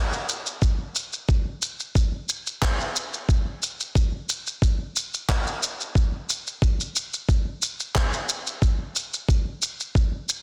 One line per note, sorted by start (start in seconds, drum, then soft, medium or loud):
0.13 shaker soft
0.29 shaker medium
0.46 shaker soft
0.62 kick loud
0.62 shaker soft
0.95 shaker medium
1.13 shaker soft
1.29 kick loud
1.29 shaker soft
1.62 shaker medium
1.80 shaker soft
1.95 kick loud
1.95 shaker soft
2.29 shaker medium
2.47 shaker soft
2.62 kick loud
2.62 clap medium
2.62 shaker soft
2.80 shaker soft
2.96 shaker medium
3.13 shaker soft
3.29 kick loud
3.29 shaker soft
3.63 shaker medium
3.80 shaker soft
3.95 kick loud
3.95 shaker soft
4.29 shaker medium
4.47 shaker soft
4.62 kick loud
4.62 shaker soft
4.96 shaker medium
5.14 shaker soft
5.29 kick loud
5.29 clap medium
5.29 shaker soft
5.47 shaker soft
5.63 shaker medium
5.81 shaker soft
5.95 kick loud
5.95 shaker soft
6.30 shaker medium
6.47 shaker soft
6.62 kick loud
6.62 shaker soft
6.80 shaker soft
6.96 shaker medium
7.13 shaker soft
7.29 kick medium
7.29 shaker soft
7.62 shaker medium
7.80 shaker soft
7.95 kick loud
7.95 clap medium
7.95 shaker soft
8.13 shaker soft
8.29 shaker medium
8.47 shaker soft
8.62 kick loud
8.62 shaker soft
8.96 shaker medium
9.14 shaker soft
9.29 kick medium
9.29 shaker soft
9.62 shaker medium
9.80 shaker soft
9.95 kick loud
9.95 shaker soft
10.29 shaker medium